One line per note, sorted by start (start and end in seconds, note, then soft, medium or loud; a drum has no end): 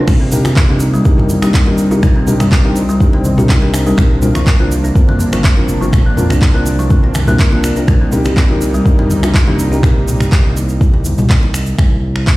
0.00 7.84 C3 medium
0.08 1.01 C2 loud
0.08 3.94 G3 medium
0.08 2.01 A#3 medium
0.08 3.94 D#4 medium
0.08 finger snap medium
0.08 kick loud
0.08 crash medium
0.08 muted conga medium
0.08 low conga loud
0.08 shaker soft
0.21 0.32 C4 medium
0.32 0.46 D4 medium
0.32 0.46 D#4 medium
0.32 0.46 G4 medium
0.32 0.46 A#4 loud
0.32 muted conga soft
0.32 low conga medium
0.32 shaker loud
0.45 0.55 F4 loud
0.45 finger snap medium
0.45 high conga medium
0.45 shaker soft
0.56 kick loud
0.56 clap loud
0.56 muted conga medium
0.56 shaker soft
0.69 0.80 C4 medium
0.69 0.82 D4 medium
0.69 0.82 D#4 medium
0.69 0.82 G4 medium
0.69 0.82 A#4 loud
0.69 high conga medium
0.80 muted conga soft
0.80 shaker loud
0.94 1.05 G3 loud
0.94 shaker medium
1.05 2.47 C2 medium
1.05 1.26 D4 medium
1.05 1.26 D#4 medium
1.05 1.26 G4 medium
1.05 1.26 A#4 medium
1.05 kick loud
1.05 shaker soft
1.18 1.29 F4 medium
1.18 mid tom medium
1.18 muted conga medium
1.29 high conga medium
1.29 shaker loud
1.42 1.49 G3 loud
1.42 1.64 D4 medium
1.42 1.64 D#4 medium
1.42 1.64 G4 medium
1.42 1.64 A#4 medium
1.42 finger snap loud
1.42 muted conga soft
1.42 shaker medium
1.54 kick loud
1.54 clap loud
1.54 shaker soft
1.66 1.78 C4 medium
1.66 1.87 D4 medium
1.66 1.87 D#4 medium
1.66 1.87 G4 medium
1.66 1.87 A#4 loud
1.66 muted conga medium
1.66 high conga medium
1.78 shaker medium
1.91 2.04 D4 medium
1.91 2.04 D#4 medium
1.91 2.02 F4 loud
1.91 2.04 G4 medium
1.91 2.04 A#4 medium
1.91 shaker medium
2.03 3.96 C4 medium
2.03 finger snap medium
2.03 kick loud
2.03 muted conga medium
2.03 low conga loud
2.03 shaker soft
2.16 2.27 C4 medium
2.27 2.41 D4 medium
2.27 2.41 D#4 medium
2.27 2.41 G4 medium
2.27 2.41 A#4 loud
2.27 muted conga soft
2.27 low conga medium
2.27 shaker medium
2.40 2.51 G3 loud
2.40 finger snap medium
2.40 mid tom medium
2.40 shaker medium
2.52 3.94 C2 medium
2.52 kick loud
2.52 clap loud
2.52 muted conga medium
2.52 shaker soft
2.64 2.77 D4 medium
2.64 2.77 D#4 medium
2.64 2.76 F4 medium
2.64 2.77 G4 medium
2.64 2.77 A#4 loud
2.76 muted conga soft
2.76 shaker medium
2.89 2.95 G3 loud
2.89 shaker medium
3.00 3.21 D4 medium
3.00 3.21 D#4 medium
3.00 3.21 G4 medium
3.00 3.21 A#4 medium
3.00 kick loud
3.00 high conga medium
3.00 shaker soft
3.13 3.24 C4 medium
3.13 muted conga medium
3.24 high conga medium
3.24 shaker loud
3.37 3.59 D4 medium
3.37 3.59 D#4 medium
3.37 3.48 F4 loud
3.37 3.59 G4 medium
3.37 3.59 A#4 medium
3.37 muted conga soft
3.37 low conga loud
3.37 shaker medium
3.49 kick loud
3.49 clap loud
3.49 shaker soft
3.62 3.73 C4 medium
3.62 3.82 D4 medium
3.62 3.82 D#4 medium
3.62 3.82 G4 medium
3.62 3.82 A#4 medium
3.62 muted conga medium
3.74 finger snap loud
3.74 shaker medium
3.86 3.98 G3 loud
3.86 3.97 D4 medium
3.86 3.96 D#4 medium
3.86 3.97 G4 medium
3.86 3.97 A#4 medium
3.86 shaker medium
3.97 4.91 C2 loud
3.97 7.84 F3 medium
3.97 7.84 A#3 medium
3.97 7.84 D4 medium
3.97 finger snap loud
3.97 kick loud
3.97 muted conga medium
3.97 low conga loud
3.97 shaker soft
4.11 4.22 D4 medium
4.22 4.36 C4 medium
4.22 4.36 D4 medium
4.22 4.36 F4 medium
4.22 4.36 A#4 loud
4.22 muted conga soft
4.22 low conga medium
4.22 shaker loud
4.35 4.42 F3 loud
4.35 finger snap medium
4.35 high conga medium
4.35 shaker medium
4.46 kick loud
4.46 clap loud
4.46 muted conga medium
4.46 shaker soft
4.59 4.71 A#3 medium
4.59 4.72 C4 loud
4.59 4.72 D4 medium
4.59 4.72 F4 medium
4.59 4.72 A#4 loud
4.59 high conga medium
4.72 muted conga soft
4.72 shaker loud
4.84 4.94 D4 loud
4.84 shaker medium
4.95 5.16 C4 medium
4.95 5.16 D4 medium
4.95 5.16 F4 medium
4.95 5.16 A#4 medium
4.95 kick loud
4.95 shaker soft
5.08 5.20 A#3 medium
5.08 mid tom medium
5.08 muted conga medium
5.19 high conga medium
5.19 shaker loud
5.32 5.77 G1 medium
5.32 5.44 F3 loud
5.32 5.54 C4 medium
5.32 5.54 D4 medium
5.32 5.54 F4 medium
5.32 5.54 A#4 medium
5.32 finger snap loud
5.32 muted conga soft
5.32 shaker medium
5.44 kick loud
5.44 clap loud
5.44 shaker soft
5.57 5.77 C4 medium
5.57 5.77 D4 medium
5.57 5.68 D4 medium
5.57 5.77 F4 medium
5.57 5.77 A#4 loud
5.57 muted conga soft
5.57 high conga medium
5.68 shaker medium
5.81 6.13 G1 medium
5.81 5.88 F3 loud
5.81 5.94 C4 medium
5.81 5.94 D4 medium
5.81 5.94 F4 medium
5.81 5.94 A#4 medium
5.81 shaker medium
5.93 finger snap medium
5.93 kick loud
5.93 muted conga soft
5.93 low conga loud
5.93 shaker soft
6.06 6.17 A#3 medium
6.17 6.27 F2 medium
6.17 6.31 C4 medium
6.17 6.31 D4 medium
6.17 6.31 F4 medium
6.17 6.31 A#4 loud
6.17 muted conga soft
6.17 low conga medium
6.17 shaker medium
6.30 7.10 C2 loud
6.30 6.41 D4 loud
6.30 finger snap medium
6.30 mid tom medium
6.30 shaker medium
6.42 kick loud
6.42 clap loud
6.42 muted conga soft
6.42 shaker soft
6.54 6.66 A#3 medium
6.54 6.67 C4 medium
6.54 6.67 D4 medium
6.54 6.67 F4 medium
6.54 6.67 A#4 loud
6.66 muted conga soft
6.66 shaker loud
6.79 6.90 F3 loud
6.79 shaker medium
6.90 7.11 C4 medium
6.90 7.11 D4 medium
6.90 7.11 F4 medium
6.90 7.11 A#4 medium
6.90 kick loud
6.90 high conga medium
6.90 shaker soft
7.03 7.14 D4 medium
7.03 muted conga soft
7.14 7.72 C2 medium
7.14 finger snap medium
7.14 high conga medium
7.14 shaker loud
7.27 7.34 A#3 loud
7.27 7.49 C4 medium
7.27 7.49 D4 medium
7.27 7.49 F4 medium
7.27 7.49 A#4 medium
7.27 mid tom medium
7.27 muted conga soft
7.27 low conga loud
7.27 shaker medium
7.39 7.46 A#4 medium
7.39 kick loud
7.39 clap loud
7.39 shaker soft
7.52 7.63 A#3 loud
7.52 7.72 C4 medium
7.52 7.72 D4 medium
7.52 7.72 F4 medium
7.52 7.72 A#4 loud
7.52 muted conga medium
7.64 finger snap medium
7.64 shaker loud
7.76 7.87 C4 medium
7.76 7.87 D4 medium
7.76 7.87 F4 medium
7.76 7.87 A#4 loud
7.76 shaker medium
7.88 8.81 C2 loud
7.88 11.74 C3 medium
7.88 11.74 G3 medium
7.88 11.74 A#3 medium
7.88 11.74 D#4 medium
7.88 finger snap medium
7.88 kick loud
7.88 muted conga medium
7.88 low conga loud
7.88 shaker soft
8.01 8.12 C4 medium
8.12 8.26 D4 medium
8.12 8.26 D#4 medium
8.12 8.26 G4 medium
8.12 8.26 A#4 loud
8.12 muted conga soft
8.12 low conga medium
8.12 shaker medium
8.25 8.36 G4 medium
8.25 finger snap medium
8.25 high conga medium
8.25 shaker soft
8.37 kick loud
8.37 clap medium
8.37 muted conga soft
8.37 shaker soft
8.50 8.62 D4 medium
8.50 8.62 D#4 medium
8.50 8.61 F4 medium
8.50 8.62 G4 medium
8.50 8.62 A#4 loud
8.50 high conga medium
8.61 muted conga soft
8.61 shaker loud
8.74 8.80 G3 loud
8.74 shaker medium
8.85 10.28 C2 medium
8.85 9.06 D4 medium
8.85 9.06 D#4 medium
8.85 9.06 G4 medium
8.85 9.06 A#4 medium
8.85 kick loud
8.85 shaker soft
8.99 9.10 C4 medium
8.99 mid tom medium
8.99 muted conga medium
9.10 high conga medium
9.10 shaker medium
9.23 9.44 D4 medium
9.23 9.44 D#4 medium
9.23 9.33 F4 loud
9.23 9.44 G4 medium
9.23 9.44 A#4 medium
9.23 finger snap loud
9.23 muted conga soft
9.23 shaker soft
9.34 kick loud
9.34 clap loud
9.34 shaker soft
9.47 9.58 C4 medium
9.47 9.68 D4 medium
9.47 9.68 D#4 medium
9.47 9.68 G4 medium
9.47 9.68 A#4 loud
9.47 muted conga medium
9.47 high conga medium
9.59 shaker loud
9.72 9.84 D4 medium
9.72 9.84 D#4 medium
9.72 9.82 G4 medium
9.72 9.84 G4 medium
9.72 9.84 A#4 loud
9.72 shaker medium
9.83 finger snap medium
9.83 kick loud
9.83 muted conga medium
9.83 low conga loud
9.83 shaker soft
10.08 muted conga soft
10.08 low conga medium
10.08 shaker medium
10.20 finger snap medium
10.20 mid tom medium
10.20 shaker medium
10.32 11.74 C2 medium
10.32 kick loud
10.32 clap loud
10.32 muted conga medium
10.32 shaker soft
10.57 muted conga soft
10.57 shaker medium
10.69 shaker soft
10.81 kick loud
10.81 high conga medium
10.81 shaker soft
10.94 muted conga medium
11.05 high conga medium
11.05 shaker loud
11.18 muted conga soft
11.18 low conga loud
11.18 shaker medium
11.30 kick loud
11.30 clap loud
11.30 shaker soft
11.43 muted conga medium
11.54 finger snap medium
11.54 shaker loud
11.66 shaker medium
11.78 12.37 C2 loud
11.78 finger snap medium
11.78 kick loud
12.16 finger snap medium
12.27 kick loud
12.27 clap loud